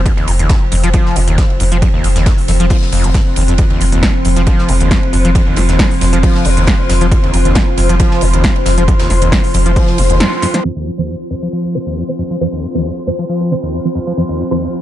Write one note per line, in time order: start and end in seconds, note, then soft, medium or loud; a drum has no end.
0.00 10.63 F3 medium
0.00 10.63 C4 medium
0.00 14.82 F4 medium
0.00 14.82 C5 medium
0.00 14.82 C6 medium
0.06 0.12 F2 medium
0.06 kick loud
0.06 closed hi-hat medium
0.06 ride medium
0.17 0.29 D#2 medium
0.17 ride soft
0.28 0.39 F1 loud
0.28 0.32 G2 medium
0.28 open hi-hat loud
0.28 ride medium
0.39 0.50 F1 medium
0.39 0.51 D#2 medium
0.39 closed hi-hat medium
0.49 0.56 F2 medium
0.49 kick loud
0.49 snare loud
0.49 closed hi-hat medium
0.49 ride medium
0.72 0.83 F1 loud
0.72 0.76 F2 loud
0.72 open hi-hat loud
0.72 ride medium
0.83 0.94 F1 medium
0.83 0.89 F3 medium
0.83 closed hi-hat medium
0.83 ride soft
0.93 1.17 F3 medium
0.93 kick loud
0.93 closed hi-hat medium
0.93 ride medium
1.06 snare soft
1.16 1.27 F1 medium
1.16 1.20 G2 medium
1.16 open hi-hat loud
1.16 ride medium
1.28 1.38 F1 medium
1.28 1.40 D#2 medium
1.28 closed hi-hat medium
1.28 ride soft
1.38 1.44 F2 medium
1.38 kick loud
1.38 snare loud
1.38 closed hi-hat medium
1.38 ride medium
1.50 ride soft
1.60 1.71 F1 loud
1.60 1.64 F2 loud
1.60 open hi-hat loud
1.60 ride medium
1.72 1.82 F1 medium
1.72 1.77 F3 medium
1.72 closed hi-hat medium
1.82 1.89 F2 medium
1.82 kick loud
1.82 closed hi-hat medium
1.82 ride medium
1.94 2.06 D#2 medium
2.04 2.15 F1 medium
2.04 2.08 G2 medium
2.04 open hi-hat loud
2.04 ride medium
2.16 2.26 F1 medium
2.16 2.28 D#2 medium
2.16 snare soft
2.16 closed hi-hat medium
2.26 2.33 F2 medium
2.26 kick loud
2.26 snare loud
2.26 closed hi-hat medium
2.26 ride medium
2.38 open hi-hat medium
2.48 2.59 F1 loud
2.48 2.52 F2 loud
2.48 snare medium
2.48 open hi-hat loud
2.48 ride medium
2.60 2.70 F1 medium
2.60 2.66 F3 medium
2.60 closed hi-hat medium
2.70 2.77 F3 medium
2.70 kick loud
2.70 closed hi-hat medium
2.70 open hi-hat medium
2.82 snare soft
2.92 3.04 F1 loud
2.92 3.06 F2 loud
2.92 open hi-hat loud
2.92 ride medium
3.04 3.10 F1 medium
3.04 3.14 F1 medium
3.04 closed hi-hat medium
3.04 ride soft
3.14 3.21 G2 medium
3.14 kick loud
3.14 snare loud
3.14 closed hi-hat medium
3.14 ride medium
3.36 3.48 F1 loud
3.36 3.43 D#2 medium
3.36 open hi-hat loud
3.36 ride medium
3.48 3.58 F1 medium
3.48 3.54 F2 medium
3.48 closed hi-hat medium
3.58 3.65 F2 medium
3.58 kick loud
3.58 closed hi-hat medium
3.58 ride medium
3.70 3.82 D#2 medium
3.70 ride soft
3.81 3.92 F1 loud
3.81 3.85 G2 medium
3.81 open hi-hat loud
3.81 ride medium
3.92 4.03 F1 medium
3.92 4.04 D#2 medium
3.92 closed hi-hat medium
4.03 4.09 F2 medium
4.03 kick loud
4.03 snare loud
4.03 closed hi-hat medium
4.03 ride medium
4.25 4.36 F1 loud
4.25 4.29 F2 loud
4.25 open hi-hat loud
4.25 ride medium
4.36 4.47 F1 medium
4.36 4.42 F3 medium
4.36 closed hi-hat medium
4.36 ride soft
4.47 4.70 F3 medium
4.47 kick loud
4.47 closed hi-hat medium
4.47 ride medium
4.59 snare soft
4.68 4.80 F1 loud
4.68 4.73 G2 medium
4.68 open hi-hat loud
4.68 ride medium
4.80 4.91 F1 medium
4.80 4.93 D#2 medium
4.80 closed hi-hat medium
4.80 ride soft
4.91 4.97 F2 medium
4.91 kick loud
4.91 snare loud
4.91 closed hi-hat medium
4.91 ride medium
5.03 ride soft
5.13 5.24 F1 loud
5.13 5.17 F2 loud
5.13 open hi-hat loud
5.13 ride medium
5.25 5.35 F1 medium
5.25 5.30 F3 medium
5.25 closed hi-hat medium
5.35 5.42 F2 medium
5.35 kick loud
5.35 closed hi-hat medium
5.35 ride medium
5.47 5.59 D#2 medium
5.56 5.68 F1 loud
5.56 5.61 G2 medium
5.56 snare medium
5.56 open hi-hat loud
5.56 ride medium
5.69 5.79 F1 medium
5.69 5.81 D#2 medium
5.69 snare soft
5.69 closed hi-hat medium
5.79 5.86 F2 medium
5.79 kick loud
5.79 snare loud
5.79 closed hi-hat medium
5.79 ride medium
5.91 open hi-hat medium
6.01 6.12 F1 loud
6.01 6.05 F2 loud
6.01 snare medium
6.01 open hi-hat loud
6.01 ride medium
6.13 6.23 F1 medium
6.13 6.19 F3 medium
6.13 closed hi-hat medium
6.23 6.47 F3 medium
6.23 kick loud
6.23 closed hi-hat medium
6.23 open hi-hat medium
6.35 snare soft
6.45 6.57 F1 loud
6.45 6.49 G2 medium
6.45 open hi-hat loud
6.45 ride medium
6.57 6.67 F1 medium
6.57 6.69 D#2 medium
6.57 closed hi-hat medium
6.57 ride soft
6.67 6.74 F2 medium
6.67 kick loud
6.67 snare loud
6.67 closed hi-hat medium
6.67 ride medium
6.89 7.01 F1 loud
6.89 6.93 F2 loud
6.89 snare loud
6.89 open hi-hat loud
6.89 ride medium
7.01 7.11 F1 medium
7.01 7.07 F3 medium
7.01 closed hi-hat medium
7.12 7.18 F2 medium
7.12 kick loud
7.12 closed hi-hat medium
7.12 ride medium
7.23 7.35 D#2 medium
7.23 ride soft
7.33 7.45 F1 loud
7.33 7.37 G2 medium
7.33 open hi-hat loud
7.33 ride medium
7.45 7.56 F1 medium
7.45 7.57 D#2 medium
7.45 closed hi-hat medium
7.55 7.62 F2 medium
7.55 kick loud
7.55 snare loud
7.55 closed hi-hat medium
7.55 ride medium
7.77 7.89 F1 loud
7.77 7.82 F2 loud
7.77 snare soft
7.77 open hi-hat loud
7.77 ride medium
7.89 8.00 F1 medium
7.89 7.95 F3 medium
7.89 closed hi-hat medium
7.89 ride soft
8.00 8.23 F3 medium
8.00 kick loud
8.00 closed hi-hat medium
8.00 ride loud
8.11 snare soft
8.21 8.33 F1 loud
8.21 8.26 G2 medium
8.21 open hi-hat loud
8.21 ride medium
8.33 8.44 F1 medium
8.33 8.45 D#2 medium
8.33 closed hi-hat medium
8.33 ride soft
8.44 8.50 F2 medium
8.44 kick loud
8.44 snare loud
8.44 closed hi-hat medium
8.44 ride medium
8.56 ride soft
8.66 8.77 F1 loud
8.66 8.70 F2 loud
8.66 snare loud
8.66 open hi-hat loud
8.66 ride medium
8.78 8.88 F1 medium
8.78 8.83 F3 medium
8.78 closed hi-hat medium
8.78 ride soft
8.88 8.94 F2 medium
8.88 kick loud
8.88 closed hi-hat medium
8.88 ride medium
8.99 9.12 D#2 medium
8.99 snare loud
8.99 ride medium
9.10 9.21 F1 loud
9.10 9.14 G2 medium
9.10 snare medium
9.10 open hi-hat loud
9.10 ride soft
9.22 9.32 F1 medium
9.22 9.34 D#2 medium
9.22 closed hi-hat medium
9.22 ride medium
9.32 9.39 F2 medium
9.32 kick loud
9.32 snare loud
9.32 closed hi-hat medium
9.32 ride medium
9.44 open hi-hat medium
9.54 9.65 F1 loud
9.54 9.58 F2 loud
9.54 open hi-hat loud
9.54 ride medium
9.66 9.76 F1 medium
9.66 9.72 F3 medium
9.66 closed hi-hat medium
9.76 10.00 F3 medium
9.76 kick loud
9.76 closed hi-hat medium
9.76 open hi-hat medium
9.87 snare soft
9.98 10.09 F1 loud
9.98 10.02 G2 medium
9.98 open hi-hat loud
9.98 ride medium
10.09 10.20 F1 medium
10.09 10.22 D#2 medium
10.09 closed hi-hat medium
10.09 ride soft
10.20 10.27 F2 medium
10.20 snare loud
10.20 closed hi-hat medium
10.42 10.46 F2 loud
10.42 snare medium
10.42 open hi-hat loud
10.42 ride medium
10.54 10.60 F3 medium
10.54 snare medium
10.54 closed hi-hat medium
10.64 10.71 F2 medium
10.64 10.71 F3 medium
10.64 14.82 F3 medium
10.64 10.71 C4 medium
10.64 14.82 C4 medium
10.64 10.71 C5 loud
10.64 downlifter medium
10.76 10.88 D#2 medium
10.87 10.90 G2 medium
10.98 11.10 D#2 medium
10.98 11.07 F3 loud
10.98 11.07 C4 medium
10.98 11.07 C5 loud
11.09 11.15 F2 medium
11.31 11.35 F2 loud
11.31 11.37 F3 medium
11.31 11.37 C4 medium
11.31 11.37 C5 medium
11.42 11.48 F3 medium
11.53 11.76 F3 medium
11.75 11.79 G2 medium
11.75 11.85 F3 medium
11.75 11.85 C4 medium
11.75 11.85 C5 loud
11.86 11.98 D#2 medium
11.97 12.03 F2 medium
12.09 12.38 F3 medium
12.09 12.38 C4 medium
12.09 12.38 C5 medium
12.19 12.23 F2 loud
12.30 12.36 F3 medium
12.41 12.47 F2 medium
12.41 12.47 F3 medium
12.41 12.47 C4 medium
12.41 12.47 C5 loud
12.53 12.64 D#2 medium
12.63 12.67 G2 medium
12.75 12.87 D#2 medium
12.75 12.84 F3 loud
12.75 12.84 C4 medium
12.75 12.84 C5 loud
12.85 12.92 F2 medium
13.07 13.11 F2 loud
13.07 13.14 F3 medium
13.07 13.14 C4 medium
13.07 13.14 C5 medium
13.19 13.25 F3 medium
13.29 13.53 F3 medium
13.51 13.55 G2 medium
13.51 13.62 F3 medium
13.51 13.62 C4 medium
13.51 13.62 C5 loud
13.63 13.75 D#2 medium
13.73 13.80 F2 medium
13.85 14.15 F3 medium
13.85 14.15 C4 medium
13.85 14.15 C5 medium
13.95 13.99 F2 loud
14.07 14.13 F3 medium
14.17 14.24 F2 medium
14.17 14.24 F3 medium
14.17 14.24 C4 medium
14.17 14.24 C5 loud
14.29 14.41 D#2 medium
14.39 14.43 G2 medium
14.51 14.63 D#2 medium
14.51 14.60 F3 loud
14.51 14.60 C4 medium
14.51 14.60 C5 loud
14.61 14.68 F2 medium